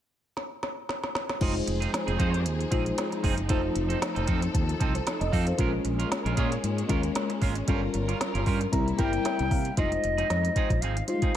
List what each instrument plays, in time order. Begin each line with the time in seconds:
0.37 snare
0.63 snare
0.89 snare
1.04 snare
1.15 snare
1.29 snare
1.40 fretless electric bass F1, string section F3 C4 D#4 G#4, clean electric guitar F3 C4 D#4 G#4, fm electric piano G#3 D#4 F4 C5, kick, crash
1.55 muted clean electric guitar stroke
1.66 fretless electric bass F1, muted clean electric guitar stroke, closed hi-hat
1.80 clean electric guitar F3 C4 D#4 G#4, closed hi-hat
1.92 muted clean electric guitar stroke, snare, closed hi-hat
2.07 fretless electric bass F1, clean electric guitar F3 C4 D#4 G#4, closed hi-hat
2.18 fretless electric bass F2, clean electric guitar F3 C4 D#4 G#4, horn section G#3 F4 C5, kick, closed hi-hat
2.32 muted clean electric guitar stroke, snare, closed hi-hat
2.45 fretless electric bass D#2, muted clean electric guitar stroke, closed hi-hat
2.59 muted clean electric guitar stroke, closed hi-hat
2.71 fretless electric bass A#1, clean electric guitar F3 C4 D#4 G#4, fm electric piano G#3 D#4 F4 C5, kick, closed hi-hat
2.85 muted clean electric guitar stroke, closed hi-hat
2.98 snare, closed hi-hat
3.11 muted clean electric guitar stroke, snare, closed hi-hat
3.23 fretless electric bass F#1, clean electric guitar F3 C4 D#4 G#4, kick, open hi-hat
3.36 muted clean electric guitar stroke, closed hi-hat
3.49 fretless electric bass F1, clean electric guitar F3 C4 D#4 A4, fm electric piano A3 D#4 F4 C5, string section A4, kick, closed hi-hat
3.62 muted clean electric guitar stroke
3.74 fretless electric bass F1, muted clean electric guitar stroke, closed hi-hat
3.89 clean electric guitar F3 C4 D#4 A4, closed hi-hat
4.02 snare, closed hi-hat
4.15 fretless electric bass F1, clean electric guitar F3 C4 D#4 A4, closed hi-hat
4.27 fretless electric bass F2, clean electric guitar F3 C4 D#4 A4, kick, closed hi-hat
4.41 muted clean electric guitar stroke, snare, closed hi-hat
4.53 fretless electric bass D#2, muted clean electric guitar stroke, kick, closed hi-hat
4.68 muted clean electric guitar stroke, closed hi-hat
4.80 fretless electric bass C2, clean electric guitar F3 C4 D#4 A4, kick, closed hi-hat
4.94 fm electric piano A4 C5, muted clean electric guitar stroke, closed hi-hat
5.07 snare, closed hi-hat
5.20 fretless electric bass F1, fm electric piano C5 D#5, muted clean electric guitar stroke, snare, closed hi-hat
5.32 fretless electric bass F2, clean electric guitar F3 C4 D#4 A4, fm electric piano F5, kick, open hi-hat
5.47 fm electric piano A4 C5, muted clean electric guitar stroke, closed hi-hat
5.57 fretless electric bass A#1, fm electric piano G#3 C#4 F4 A#4, clean electric guitar G#3 C#4 F4 A#4, string section G#3 A#3 C#4, kick, closed hi-hat
5.72 muted clean electric guitar stroke
5.84 fretless electric bass A#1, muted clean electric guitar stroke, closed hi-hat
5.99 clean electric guitar G#3 C#4 F4 A#4, closed hi-hat
6.10 muted clean electric guitar stroke, snare, closed hi-hat
6.25 fretless electric bass A#1, clean electric guitar G#3 C#4 F4 A#4, closed hi-hat
6.36 fretless electric bass A#2, clean electric guitar G#3 C#4 F4 A#4, horn section A#3 G#4 C#5, kick, closed hi-hat
6.51 muted clean electric guitar stroke, snare, closed hi-hat
6.63 fretless electric bass G#2, muted clean electric guitar stroke, closed hi-hat
6.77 muted clean electric guitar stroke, closed hi-hat
6.88 fretless electric bass D#2, clean electric guitar G#3 C#4 F4 A#4, fm electric piano G#3 C#4 F4 A#4, kick, closed hi-hat
7.03 muted clean electric guitar stroke, closed hi-hat
7.15 snare, closed hi-hat
7.29 muted clean electric guitar stroke, snare, closed hi-hat
7.41 fretless electric bass G#1, clean electric guitar G#3 C#4 F4 A#4, kick, open hi-hat
7.55 muted clean electric guitar stroke, closed hi-hat
7.67 fretless electric bass G1, fm electric piano G3 C#4 F4 A4, string section G3 F4 A#4, clean electric guitar G3 C#4 F4 A#4, kick, closed hi-hat
7.75 fm electric piano A#4
7.82 muted clean electric guitar stroke
7.94 fretless electric bass G1, muted clean electric guitar stroke, closed hi-hat
8.08 clean electric guitar G3 C#4 F4 A#4, snare, closed hi-hat
8.20 muted clean electric guitar stroke, snare, closed hi-hat
8.34 fretless electric bass G1, clean electric guitar G3 C#4 F4 A#4, closed hi-hat
8.46 fretless electric bass G2, clean electric guitar G3 C#4 F4 A#4, fm electric piano C6, kick, open hi-hat
8.61 muted clean electric guitar stroke, snare, closed hi-hat
8.72 fretless electric bass C2, string section C3 G3 A#3 E4, fm electric piano G3 C4 E4 A#4 A#5, muted clean electric guitar stroke, kick, closed hi-hat
8.86 muted clean electric guitar stroke, closed hi-hat
8.98 fretless electric bass G1, fm electric piano G3 C4 E4 A#4 G5, clean electric guitar G3 C4 E4 A#4, flute G5, kick, closed hi-hat
9.13 muted clean electric guitar stroke, closed hi-hat
9.25 fm electric piano E5, muted clean electric guitar stroke, snare, closed hi-hat
9.39 fretless electric bass C2, muted clean electric guitar stroke, snare, closed hi-hat
9.51 fretless electric bass C3, fm electric piano F5, kick, snare, open hi-hat
9.65 muted clean electric guitar stroke, closed hi-hat
9.77 fretless electric bass F1, clean electric guitar F3 C4 D#4 G#4, fm electric piano G3 D#4 F4 C5, flute D#5, kick, closed hi-hat
9.83 fm electric piano G#3
9.92 muted clean electric guitar stroke, closed hi-hat
10.04 fretless electric bass F1, muted clean electric guitar stroke, closed hi-hat
10.17 clean electric guitar F3 C4 D#4 G#4, snare, closed hi-hat
10.29 fretless electric bass F2, muted clean electric guitar stroke, snare, closed hi-hat
10.44 muted clean electric guitar stroke, closed hi-hat
10.56 clean electric guitar F3 C4 D#4 G#4, kick, closed hi-hat
10.70 fretless electric bass A#1, muted clean electric guitar stroke, kick, snare, closed hi-hat
10.81 fretless electric bass G#1, clean electric guitar F3 C4 D#4 G#4, flute F5, closed hi-hat
10.97 muted clean electric guitar stroke, closed hi-hat
11.07 fm electric piano G3 D#4 F4 C5, flute F5, muted clean electric guitar stroke, closed hi-hat
11.13 fm electric piano G#3
11.22 clean electric guitar F3 C4 D#4 G#4, kick, closed hi-hat